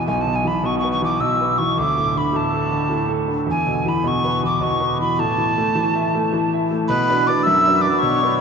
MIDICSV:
0, 0, Header, 1, 4, 480
1, 0, Start_track
1, 0, Tempo, 379027
1, 79, Time_signature, 9, 3, 24, 8
1, 10647, End_track
2, 0, Start_track
2, 0, Title_t, "Tin whistle"
2, 0, Program_c, 0, 75
2, 91, Note_on_c, 0, 80, 96
2, 267, Note_on_c, 0, 81, 84
2, 286, Note_off_c, 0, 80, 0
2, 450, Note_on_c, 0, 80, 84
2, 469, Note_off_c, 0, 81, 0
2, 600, Note_on_c, 0, 83, 76
2, 619, Note_off_c, 0, 80, 0
2, 832, Note_on_c, 0, 85, 78
2, 851, Note_off_c, 0, 83, 0
2, 986, Note_off_c, 0, 85, 0
2, 1003, Note_on_c, 0, 85, 60
2, 1150, Note_off_c, 0, 85, 0
2, 1160, Note_on_c, 0, 85, 84
2, 1292, Note_off_c, 0, 85, 0
2, 1321, Note_on_c, 0, 86, 77
2, 1526, Note_on_c, 0, 88, 81
2, 1545, Note_off_c, 0, 86, 0
2, 2003, Note_on_c, 0, 85, 86
2, 2022, Note_off_c, 0, 88, 0
2, 2257, Note_on_c, 0, 86, 100
2, 2276, Note_off_c, 0, 85, 0
2, 2756, Note_on_c, 0, 83, 73
2, 2775, Note_off_c, 0, 86, 0
2, 2994, Note_on_c, 0, 81, 74
2, 3013, Note_off_c, 0, 83, 0
2, 3954, Note_off_c, 0, 81, 0
2, 4442, Note_on_c, 0, 80, 87
2, 4920, Note_on_c, 0, 83, 82
2, 4939, Note_off_c, 0, 80, 0
2, 5162, Note_on_c, 0, 85, 101
2, 5181, Note_off_c, 0, 83, 0
2, 5632, Note_off_c, 0, 85, 0
2, 5643, Note_on_c, 0, 86, 87
2, 5868, Note_on_c, 0, 85, 90
2, 5887, Note_off_c, 0, 86, 0
2, 6341, Note_off_c, 0, 85, 0
2, 6348, Note_on_c, 0, 83, 89
2, 6580, Note_on_c, 0, 81, 113
2, 6599, Note_off_c, 0, 83, 0
2, 8267, Note_off_c, 0, 81, 0
2, 8713, Note_on_c, 0, 83, 112
2, 9208, Note_on_c, 0, 86, 90
2, 9227, Note_off_c, 0, 83, 0
2, 9411, Note_on_c, 0, 88, 99
2, 9430, Note_off_c, 0, 86, 0
2, 9898, Note_on_c, 0, 86, 85
2, 9917, Note_off_c, 0, 88, 0
2, 10117, Note_on_c, 0, 85, 95
2, 10136, Note_off_c, 0, 86, 0
2, 10600, Note_off_c, 0, 85, 0
2, 10607, Note_on_c, 0, 83, 87
2, 10647, Note_off_c, 0, 83, 0
2, 10647, End_track
3, 0, Start_track
3, 0, Title_t, "Melodica"
3, 0, Program_c, 1, 22
3, 8736, Note_on_c, 1, 71, 81
3, 9225, Note_on_c, 1, 74, 85
3, 9231, Note_off_c, 1, 71, 0
3, 9443, Note_on_c, 1, 76, 74
3, 9457, Note_off_c, 1, 74, 0
3, 9909, Note_on_c, 1, 74, 79
3, 9944, Note_off_c, 1, 76, 0
3, 10135, Note_off_c, 1, 74, 0
3, 10136, Note_on_c, 1, 73, 79
3, 10647, Note_off_c, 1, 73, 0
3, 10647, End_track
4, 0, Start_track
4, 0, Title_t, "Grand piano"
4, 0, Program_c, 2, 0
4, 0, Note_on_c, 2, 47, 60
4, 97, Note_on_c, 2, 35, 60
4, 318, Note_off_c, 2, 47, 0
4, 337, Note_on_c, 2, 47, 42
4, 562, Note_off_c, 2, 47, 0
4, 563, Note_on_c, 2, 52, 48
4, 792, Note_off_c, 2, 52, 0
4, 802, Note_on_c, 2, 47, 64
4, 1056, Note_on_c, 2, 71, 49
4, 1282, Note_off_c, 2, 71, 0
4, 1287, Note_on_c, 2, 52, 44
4, 1508, Note_off_c, 2, 47, 0
4, 1514, Note_off_c, 2, 52, 0
4, 1527, Note_on_c, 2, 47, 61
4, 1785, Note_on_c, 2, 71, 42
4, 2007, Note_off_c, 2, 71, 0
4, 2012, Note_on_c, 2, 52, 42
4, 2201, Note_off_c, 2, 35, 0
4, 2224, Note_off_c, 2, 47, 0
4, 2237, Note_off_c, 2, 52, 0
4, 2248, Note_on_c, 2, 38, 63
4, 2496, Note_on_c, 2, 45, 37
4, 2723, Note_off_c, 2, 45, 0
4, 2726, Note_on_c, 2, 50, 47
4, 2948, Note_on_c, 2, 45, 56
4, 2955, Note_off_c, 2, 50, 0
4, 3198, Note_on_c, 2, 69, 47
4, 3433, Note_on_c, 2, 50, 46
4, 3434, Note_off_c, 2, 69, 0
4, 3647, Note_off_c, 2, 45, 0
4, 3666, Note_on_c, 2, 45, 58
4, 3669, Note_off_c, 2, 50, 0
4, 3903, Note_on_c, 2, 69, 47
4, 4147, Note_off_c, 2, 69, 0
4, 4153, Note_on_c, 2, 50, 49
4, 4358, Note_off_c, 2, 38, 0
4, 4375, Note_off_c, 2, 45, 0
4, 4385, Note_on_c, 2, 40, 54
4, 4389, Note_off_c, 2, 50, 0
4, 4645, Note_on_c, 2, 47, 39
4, 4879, Note_off_c, 2, 47, 0
4, 4885, Note_on_c, 2, 52, 52
4, 5113, Note_on_c, 2, 47, 63
4, 5115, Note_off_c, 2, 52, 0
4, 5370, Note_on_c, 2, 71, 50
4, 5602, Note_off_c, 2, 71, 0
4, 5612, Note_on_c, 2, 52, 47
4, 5818, Note_off_c, 2, 47, 0
4, 5837, Note_on_c, 2, 47, 62
4, 5839, Note_off_c, 2, 52, 0
4, 6082, Note_on_c, 2, 71, 50
4, 6317, Note_off_c, 2, 71, 0
4, 6323, Note_on_c, 2, 52, 40
4, 6506, Note_off_c, 2, 40, 0
4, 6540, Note_off_c, 2, 47, 0
4, 6555, Note_off_c, 2, 52, 0
4, 6567, Note_on_c, 2, 45, 56
4, 6810, Note_on_c, 2, 52, 36
4, 7041, Note_off_c, 2, 52, 0
4, 7056, Note_on_c, 2, 57, 51
4, 7281, Note_off_c, 2, 57, 0
4, 7283, Note_on_c, 2, 52, 64
4, 7536, Note_on_c, 2, 76, 45
4, 7764, Note_off_c, 2, 76, 0
4, 7781, Note_on_c, 2, 57, 44
4, 7993, Note_off_c, 2, 52, 0
4, 8003, Note_off_c, 2, 57, 0
4, 8012, Note_on_c, 2, 52, 58
4, 8275, Note_on_c, 2, 76, 49
4, 8493, Note_off_c, 2, 76, 0
4, 8493, Note_on_c, 2, 57, 46
4, 8674, Note_off_c, 2, 45, 0
4, 8706, Note_off_c, 2, 52, 0
4, 8719, Note_off_c, 2, 57, 0
4, 8731, Note_on_c, 2, 47, 68
4, 8988, Note_on_c, 2, 62, 41
4, 8994, Note_on_c, 2, 66, 35
4, 8995, Note_on_c, 2, 71, 46
4, 9192, Note_off_c, 2, 62, 0
4, 9200, Note_off_c, 2, 47, 0
4, 9201, Note_off_c, 2, 66, 0
4, 9209, Note_off_c, 2, 71, 0
4, 9211, Note_on_c, 2, 62, 47
4, 9220, Note_on_c, 2, 66, 41
4, 9228, Note_on_c, 2, 71, 54
4, 9457, Note_on_c, 2, 42, 62
4, 9600, Note_off_c, 2, 62, 0
4, 9605, Note_off_c, 2, 66, 0
4, 9610, Note_off_c, 2, 71, 0
4, 9707, Note_on_c, 2, 62, 40
4, 9710, Note_on_c, 2, 66, 47
4, 9716, Note_on_c, 2, 71, 50
4, 9922, Note_off_c, 2, 42, 0
4, 9930, Note_off_c, 2, 62, 0
4, 9937, Note_off_c, 2, 66, 0
4, 9940, Note_off_c, 2, 71, 0
4, 9949, Note_on_c, 2, 62, 46
4, 9956, Note_on_c, 2, 66, 39
4, 9959, Note_on_c, 2, 71, 46
4, 10166, Note_on_c, 2, 47, 62
4, 10330, Note_off_c, 2, 62, 0
4, 10334, Note_off_c, 2, 66, 0
4, 10336, Note_off_c, 2, 71, 0
4, 10416, Note_on_c, 2, 62, 46
4, 10421, Note_on_c, 2, 66, 38
4, 10427, Note_on_c, 2, 71, 55
4, 10632, Note_off_c, 2, 62, 0
4, 10633, Note_off_c, 2, 66, 0
4, 10635, Note_off_c, 2, 47, 0
4, 10643, Note_off_c, 2, 71, 0
4, 10647, End_track
0, 0, End_of_file